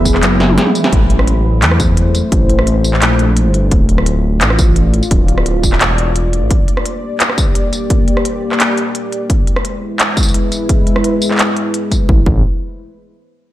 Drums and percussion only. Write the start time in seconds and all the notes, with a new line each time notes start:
0.05 kick, tambourine
0.15 cross-stick, clap
0.23 clap, closed hi-hat
0.40 snare
0.49 high tom
0.58 snare, closed hi-hat
0.67 mid tom
0.75 closed hi-hat, tambourine
0.84 snare
0.93 kick, closed hi-hat
1.10 closed hi-hat
1.19 cross-stick
1.27 closed hi-hat
1.62 clap, closed hi-hat
1.71 cross-stick
1.80 kick, closed hi-hat, tambourine
1.97 closed hi-hat
2.15 closed hi-hat, tambourine
2.32 kick, closed hi-hat
2.50 closed hi-hat
2.59 cross-stick
2.67 closed hi-hat
2.84 tambourine
2.94 cross-stick, clap
3.02 clap, closed hi-hat
3.19 closed hi-hat
3.37 closed hi-hat
3.54 closed hi-hat
3.71 kick, closed hi-hat
3.89 closed hi-hat
3.98 cross-stick
4.06 closed hi-hat
4.41 clap, closed hi-hat
4.50 cross-stick
4.59 kick, closed hi-hat, tambourine
4.76 closed hi-hat
4.94 closed hi-hat
5.03 tambourine
5.11 kick, closed hi-hat
5.28 closed hi-hat
5.38 cross-stick
5.46 closed hi-hat
5.63 kick, tambourine
5.72 cross-stick, clap
5.81 clap, closed hi-hat
5.98 closed hi-hat
6.16 closed hi-hat
6.33 closed hi-hat
6.51 kick, closed hi-hat
6.68 closed hi-hat
6.77 cross-stick
6.86 closed hi-hat
7.20 clap, closed hi-hat
7.30 cross-stick
7.38 kick, closed hi-hat, tambourine
7.55 closed hi-hat
7.73 closed hi-hat, tambourine
7.90 kick, closed hi-hat
8.08 closed hi-hat
8.17 cross-stick
8.25 closed hi-hat
8.52 cross-stick, clap
8.60 clap, closed hi-hat
8.78 closed hi-hat
8.95 closed hi-hat
9.12 closed hi-hat
9.30 kick, closed hi-hat
9.47 closed hi-hat
9.56 cross-stick
9.65 closed hi-hat
10.00 clap, closed hi-hat
10.17 kick, closed hi-hat, tambourine
10.23 tambourine
10.29 tambourine
10.34 closed hi-hat
10.52 closed hi-hat, tambourine
10.69 kick, closed hi-hat
10.87 closed hi-hat
10.96 cross-stick
11.04 closed hi-hat
11.22 tambourine
11.31 cross-stick, clap
11.35 clap
11.39 clap, closed hi-hat
11.44 clap
11.57 closed hi-hat
11.74 closed hi-hat
11.91 kick, closed hi-hat, tambourine
12.09 kick
12.26 kick